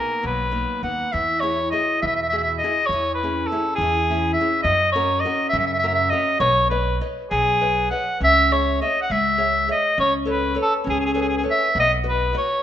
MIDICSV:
0, 0, Header, 1, 4, 480
1, 0, Start_track
1, 0, Key_signature, 4, "major"
1, 0, Tempo, 590551
1, 925, Time_signature, 6, 3, 24, 8
1, 10264, End_track
2, 0, Start_track
2, 0, Title_t, "Soprano saxophone"
2, 0, Program_c, 0, 64
2, 0, Note_on_c, 0, 70, 70
2, 186, Note_off_c, 0, 70, 0
2, 214, Note_on_c, 0, 71, 67
2, 660, Note_off_c, 0, 71, 0
2, 677, Note_on_c, 0, 78, 66
2, 913, Note_on_c, 0, 76, 79
2, 926, Note_off_c, 0, 78, 0
2, 1141, Note_on_c, 0, 73, 79
2, 1153, Note_off_c, 0, 76, 0
2, 1385, Note_off_c, 0, 73, 0
2, 1390, Note_on_c, 0, 75, 74
2, 1621, Note_off_c, 0, 75, 0
2, 1642, Note_on_c, 0, 76, 79
2, 1672, Note_off_c, 0, 76, 0
2, 1677, Note_on_c, 0, 76, 73
2, 1747, Note_off_c, 0, 76, 0
2, 1753, Note_on_c, 0, 76, 71
2, 1799, Note_off_c, 0, 76, 0
2, 1804, Note_on_c, 0, 76, 62
2, 1858, Note_off_c, 0, 76, 0
2, 1863, Note_on_c, 0, 76, 82
2, 1924, Note_off_c, 0, 76, 0
2, 1929, Note_on_c, 0, 76, 70
2, 1970, Note_off_c, 0, 76, 0
2, 1974, Note_on_c, 0, 76, 69
2, 2046, Note_off_c, 0, 76, 0
2, 2100, Note_on_c, 0, 75, 81
2, 2326, Note_on_c, 0, 73, 101
2, 2339, Note_off_c, 0, 75, 0
2, 2550, Note_off_c, 0, 73, 0
2, 2555, Note_on_c, 0, 71, 69
2, 2813, Note_on_c, 0, 69, 68
2, 2825, Note_off_c, 0, 71, 0
2, 3046, Note_off_c, 0, 69, 0
2, 3051, Note_on_c, 0, 68, 88
2, 3501, Note_off_c, 0, 68, 0
2, 3521, Note_on_c, 0, 76, 72
2, 3753, Note_off_c, 0, 76, 0
2, 3763, Note_on_c, 0, 75, 94
2, 3994, Note_off_c, 0, 75, 0
2, 3998, Note_on_c, 0, 73, 77
2, 4228, Note_on_c, 0, 75, 74
2, 4240, Note_off_c, 0, 73, 0
2, 4457, Note_off_c, 0, 75, 0
2, 4462, Note_on_c, 0, 76, 88
2, 4535, Note_off_c, 0, 76, 0
2, 4540, Note_on_c, 0, 76, 77
2, 4595, Note_off_c, 0, 76, 0
2, 4600, Note_on_c, 0, 76, 75
2, 4652, Note_off_c, 0, 76, 0
2, 4657, Note_on_c, 0, 76, 71
2, 4702, Note_off_c, 0, 76, 0
2, 4706, Note_on_c, 0, 76, 84
2, 4770, Note_off_c, 0, 76, 0
2, 4775, Note_on_c, 0, 76, 68
2, 4825, Note_off_c, 0, 76, 0
2, 4830, Note_on_c, 0, 76, 77
2, 4955, Note_on_c, 0, 75, 80
2, 4967, Note_off_c, 0, 76, 0
2, 5198, Note_off_c, 0, 75, 0
2, 5203, Note_on_c, 0, 73, 95
2, 5431, Note_off_c, 0, 73, 0
2, 5446, Note_on_c, 0, 71, 68
2, 5673, Note_off_c, 0, 71, 0
2, 5944, Note_on_c, 0, 68, 93
2, 6398, Note_off_c, 0, 68, 0
2, 6424, Note_on_c, 0, 78, 69
2, 6653, Note_off_c, 0, 78, 0
2, 6696, Note_on_c, 0, 76, 107
2, 6929, Note_on_c, 0, 73, 86
2, 6941, Note_off_c, 0, 76, 0
2, 7160, Note_off_c, 0, 73, 0
2, 7165, Note_on_c, 0, 75, 80
2, 7325, Note_off_c, 0, 75, 0
2, 7330, Note_on_c, 0, 78, 71
2, 7409, Note_on_c, 0, 76, 95
2, 7421, Note_off_c, 0, 78, 0
2, 7887, Note_off_c, 0, 76, 0
2, 7894, Note_on_c, 0, 75, 81
2, 8111, Note_off_c, 0, 75, 0
2, 8128, Note_on_c, 0, 73, 86
2, 8234, Note_off_c, 0, 73, 0
2, 8371, Note_on_c, 0, 71, 73
2, 8587, Note_off_c, 0, 71, 0
2, 8632, Note_on_c, 0, 69, 84
2, 8732, Note_off_c, 0, 69, 0
2, 8859, Note_on_c, 0, 68, 81
2, 8904, Note_off_c, 0, 68, 0
2, 8940, Note_on_c, 0, 68, 65
2, 8975, Note_off_c, 0, 68, 0
2, 8983, Note_on_c, 0, 68, 80
2, 9027, Note_off_c, 0, 68, 0
2, 9050, Note_on_c, 0, 68, 62
2, 9090, Note_off_c, 0, 68, 0
2, 9111, Note_on_c, 0, 68, 74
2, 9150, Note_off_c, 0, 68, 0
2, 9173, Note_on_c, 0, 68, 69
2, 9212, Note_off_c, 0, 68, 0
2, 9246, Note_on_c, 0, 68, 72
2, 9279, Note_off_c, 0, 68, 0
2, 9351, Note_on_c, 0, 76, 83
2, 9557, Note_off_c, 0, 76, 0
2, 9588, Note_on_c, 0, 75, 95
2, 9689, Note_off_c, 0, 75, 0
2, 9828, Note_on_c, 0, 71, 79
2, 10036, Note_off_c, 0, 71, 0
2, 10058, Note_on_c, 0, 73, 80
2, 10264, Note_off_c, 0, 73, 0
2, 10264, End_track
3, 0, Start_track
3, 0, Title_t, "Nylon-string guitar"
3, 0, Program_c, 1, 24
3, 0, Note_on_c, 1, 58, 44
3, 0, Note_on_c, 1, 59, 40
3, 0, Note_on_c, 1, 63, 47
3, 188, Note_on_c, 1, 54, 56
3, 334, Note_off_c, 1, 58, 0
3, 337, Note_off_c, 1, 59, 0
3, 339, Note_off_c, 1, 63, 0
3, 418, Note_on_c, 1, 58, 47
3, 424, Note_on_c, 1, 59, 43
3, 428, Note_on_c, 1, 63, 48
3, 663, Note_off_c, 1, 58, 0
3, 664, Note_off_c, 1, 54, 0
3, 668, Note_off_c, 1, 59, 0
3, 672, Note_off_c, 1, 63, 0
3, 673, Note_on_c, 1, 58, 42
3, 678, Note_on_c, 1, 59, 36
3, 682, Note_on_c, 1, 63, 43
3, 871, Note_off_c, 1, 58, 0
3, 874, Note_off_c, 1, 59, 0
3, 877, Note_off_c, 1, 63, 0
3, 916, Note_on_c, 1, 52, 56
3, 1156, Note_on_c, 1, 66, 43
3, 1159, Note_on_c, 1, 64, 47
3, 1163, Note_on_c, 1, 68, 55
3, 1389, Note_off_c, 1, 64, 0
3, 1390, Note_off_c, 1, 52, 0
3, 1394, Note_off_c, 1, 66, 0
3, 1396, Note_off_c, 1, 68, 0
3, 1399, Note_on_c, 1, 64, 48
3, 1403, Note_on_c, 1, 66, 46
3, 1407, Note_on_c, 1, 68, 48
3, 1645, Note_on_c, 1, 47, 51
3, 1785, Note_off_c, 1, 64, 0
3, 1788, Note_off_c, 1, 66, 0
3, 1789, Note_off_c, 1, 68, 0
3, 1887, Note_on_c, 1, 66, 44
3, 1894, Note_on_c, 1, 68, 52
3, 1895, Note_on_c, 1, 64, 47
3, 2109, Note_off_c, 1, 47, 0
3, 2132, Note_off_c, 1, 66, 0
3, 2135, Note_off_c, 1, 68, 0
3, 2136, Note_off_c, 1, 64, 0
3, 2142, Note_on_c, 1, 66, 41
3, 2144, Note_on_c, 1, 68, 54
3, 2147, Note_on_c, 1, 64, 52
3, 2325, Note_off_c, 1, 66, 0
3, 2328, Note_off_c, 1, 64, 0
3, 2328, Note_off_c, 1, 68, 0
3, 2379, Note_on_c, 1, 52, 57
3, 2626, Note_on_c, 1, 61, 47
3, 2628, Note_on_c, 1, 64, 45
3, 2632, Note_on_c, 1, 68, 53
3, 2831, Note_off_c, 1, 52, 0
3, 2849, Note_off_c, 1, 64, 0
3, 2853, Note_off_c, 1, 61, 0
3, 2854, Note_off_c, 1, 68, 0
3, 2859, Note_on_c, 1, 64, 46
3, 2862, Note_on_c, 1, 61, 47
3, 2866, Note_on_c, 1, 68, 50
3, 3098, Note_on_c, 1, 52, 63
3, 3228, Note_off_c, 1, 64, 0
3, 3230, Note_off_c, 1, 61, 0
3, 3230, Note_off_c, 1, 68, 0
3, 3329, Note_on_c, 1, 61, 49
3, 3336, Note_on_c, 1, 64, 47
3, 3343, Note_on_c, 1, 68, 52
3, 3544, Note_off_c, 1, 52, 0
3, 3566, Note_off_c, 1, 61, 0
3, 3572, Note_off_c, 1, 64, 0
3, 3574, Note_off_c, 1, 68, 0
3, 3576, Note_on_c, 1, 61, 43
3, 3584, Note_on_c, 1, 68, 49
3, 3585, Note_on_c, 1, 64, 49
3, 3753, Note_off_c, 1, 61, 0
3, 3757, Note_off_c, 1, 64, 0
3, 3758, Note_off_c, 1, 68, 0
3, 3793, Note_on_c, 1, 54, 53
3, 4022, Note_on_c, 1, 61, 54
3, 4028, Note_on_c, 1, 66, 46
3, 4028, Note_on_c, 1, 70, 60
3, 4251, Note_off_c, 1, 54, 0
3, 4259, Note_off_c, 1, 66, 0
3, 4264, Note_off_c, 1, 61, 0
3, 4264, Note_off_c, 1, 70, 0
3, 4269, Note_on_c, 1, 66, 50
3, 4274, Note_on_c, 1, 61, 53
3, 4275, Note_on_c, 1, 70, 55
3, 4498, Note_on_c, 1, 49, 69
3, 4647, Note_off_c, 1, 66, 0
3, 4651, Note_off_c, 1, 61, 0
3, 4651, Note_off_c, 1, 70, 0
3, 4742, Note_on_c, 1, 61, 56
3, 4746, Note_on_c, 1, 70, 64
3, 4750, Note_on_c, 1, 66, 45
3, 4961, Note_off_c, 1, 49, 0
3, 4967, Note_off_c, 1, 66, 0
3, 4972, Note_off_c, 1, 61, 0
3, 4976, Note_off_c, 1, 70, 0
3, 4977, Note_on_c, 1, 66, 46
3, 4982, Note_on_c, 1, 61, 45
3, 4986, Note_on_c, 1, 70, 56
3, 5166, Note_off_c, 1, 66, 0
3, 5169, Note_off_c, 1, 61, 0
3, 5172, Note_off_c, 1, 70, 0
3, 5211, Note_on_c, 1, 59, 57
3, 5451, Note_off_c, 1, 59, 0
3, 5454, Note_on_c, 1, 71, 46
3, 5454, Note_on_c, 1, 73, 42
3, 5457, Note_on_c, 1, 75, 49
3, 5689, Note_off_c, 1, 75, 0
3, 5690, Note_off_c, 1, 71, 0
3, 5694, Note_off_c, 1, 73, 0
3, 5699, Note_on_c, 1, 71, 46
3, 5702, Note_on_c, 1, 75, 56
3, 5703, Note_on_c, 1, 73, 42
3, 5941, Note_on_c, 1, 54, 57
3, 6088, Note_off_c, 1, 75, 0
3, 6089, Note_off_c, 1, 71, 0
3, 6091, Note_off_c, 1, 73, 0
3, 6186, Note_on_c, 1, 71, 47
3, 6189, Note_on_c, 1, 73, 44
3, 6195, Note_on_c, 1, 75, 55
3, 6415, Note_off_c, 1, 54, 0
3, 6420, Note_off_c, 1, 71, 0
3, 6420, Note_off_c, 1, 73, 0
3, 6429, Note_on_c, 1, 71, 43
3, 6430, Note_on_c, 1, 73, 39
3, 6433, Note_off_c, 1, 75, 0
3, 6442, Note_on_c, 1, 75, 48
3, 6624, Note_off_c, 1, 71, 0
3, 6624, Note_off_c, 1, 73, 0
3, 6632, Note_off_c, 1, 75, 0
3, 6674, Note_on_c, 1, 61, 55
3, 6918, Note_on_c, 1, 68, 43
3, 6919, Note_on_c, 1, 73, 37
3, 6923, Note_on_c, 1, 76, 53
3, 7146, Note_off_c, 1, 61, 0
3, 7156, Note_off_c, 1, 73, 0
3, 7157, Note_off_c, 1, 68, 0
3, 7160, Note_off_c, 1, 76, 0
3, 7166, Note_on_c, 1, 68, 42
3, 7167, Note_on_c, 1, 73, 41
3, 7170, Note_on_c, 1, 76, 46
3, 7403, Note_on_c, 1, 56, 62
3, 7550, Note_off_c, 1, 73, 0
3, 7551, Note_off_c, 1, 68, 0
3, 7553, Note_off_c, 1, 76, 0
3, 7624, Note_on_c, 1, 68, 42
3, 7625, Note_on_c, 1, 73, 48
3, 7637, Note_on_c, 1, 76, 52
3, 7857, Note_off_c, 1, 68, 0
3, 7863, Note_off_c, 1, 73, 0
3, 7866, Note_off_c, 1, 76, 0
3, 7867, Note_on_c, 1, 68, 42
3, 7869, Note_off_c, 1, 56, 0
3, 7872, Note_on_c, 1, 73, 42
3, 7877, Note_on_c, 1, 76, 53
3, 8064, Note_off_c, 1, 68, 0
3, 8067, Note_off_c, 1, 73, 0
3, 8069, Note_off_c, 1, 76, 0
3, 8111, Note_on_c, 1, 61, 55
3, 8335, Note_on_c, 1, 69, 51
3, 8342, Note_on_c, 1, 71, 42
3, 8347, Note_on_c, 1, 73, 54
3, 8562, Note_off_c, 1, 69, 0
3, 8572, Note_off_c, 1, 73, 0
3, 8572, Note_on_c, 1, 69, 50
3, 8573, Note_off_c, 1, 71, 0
3, 8578, Note_off_c, 1, 61, 0
3, 8582, Note_on_c, 1, 71, 46
3, 8584, Note_on_c, 1, 73, 57
3, 8813, Note_on_c, 1, 61, 65
3, 8964, Note_off_c, 1, 69, 0
3, 8970, Note_off_c, 1, 73, 0
3, 8971, Note_off_c, 1, 71, 0
3, 9057, Note_on_c, 1, 69, 46
3, 9061, Note_on_c, 1, 73, 57
3, 9066, Note_on_c, 1, 71, 46
3, 9281, Note_off_c, 1, 71, 0
3, 9283, Note_off_c, 1, 69, 0
3, 9288, Note_off_c, 1, 61, 0
3, 9290, Note_off_c, 1, 73, 0
3, 9292, Note_on_c, 1, 69, 50
3, 9293, Note_on_c, 1, 71, 39
3, 9300, Note_on_c, 1, 73, 54
3, 9492, Note_off_c, 1, 71, 0
3, 9493, Note_off_c, 1, 69, 0
3, 9497, Note_off_c, 1, 73, 0
3, 9555, Note_on_c, 1, 59, 63
3, 9782, Note_on_c, 1, 66, 48
3, 9785, Note_on_c, 1, 71, 50
3, 9787, Note_on_c, 1, 75, 61
3, 10012, Note_off_c, 1, 66, 0
3, 10016, Note_off_c, 1, 71, 0
3, 10021, Note_off_c, 1, 59, 0
3, 10022, Note_on_c, 1, 66, 53
3, 10024, Note_off_c, 1, 75, 0
3, 10026, Note_on_c, 1, 71, 40
3, 10034, Note_on_c, 1, 75, 56
3, 10264, Note_off_c, 1, 66, 0
3, 10264, Note_off_c, 1, 71, 0
3, 10264, Note_off_c, 1, 75, 0
3, 10264, End_track
4, 0, Start_track
4, 0, Title_t, "Upright bass"
4, 0, Program_c, 2, 32
4, 196, Note_on_c, 2, 35, 73
4, 512, Note_off_c, 2, 35, 0
4, 673, Note_on_c, 2, 39, 75
4, 834, Note_off_c, 2, 39, 0
4, 926, Note_on_c, 2, 40, 86
4, 1396, Note_off_c, 2, 40, 0
4, 1649, Note_on_c, 2, 40, 90
4, 2114, Note_off_c, 2, 40, 0
4, 2351, Note_on_c, 2, 40, 84
4, 2816, Note_off_c, 2, 40, 0
4, 3075, Note_on_c, 2, 40, 94
4, 3535, Note_off_c, 2, 40, 0
4, 3776, Note_on_c, 2, 42, 97
4, 4243, Note_off_c, 2, 42, 0
4, 4498, Note_on_c, 2, 42, 92
4, 4963, Note_off_c, 2, 42, 0
4, 5202, Note_on_c, 2, 35, 102
4, 5676, Note_off_c, 2, 35, 0
4, 5944, Note_on_c, 2, 35, 90
4, 6420, Note_off_c, 2, 35, 0
4, 6669, Note_on_c, 2, 37, 89
4, 7144, Note_off_c, 2, 37, 0
4, 7395, Note_on_c, 2, 37, 82
4, 7865, Note_off_c, 2, 37, 0
4, 8112, Note_on_c, 2, 37, 89
4, 8579, Note_off_c, 2, 37, 0
4, 8835, Note_on_c, 2, 37, 81
4, 9302, Note_off_c, 2, 37, 0
4, 9551, Note_on_c, 2, 35, 88
4, 10020, Note_off_c, 2, 35, 0
4, 10264, End_track
0, 0, End_of_file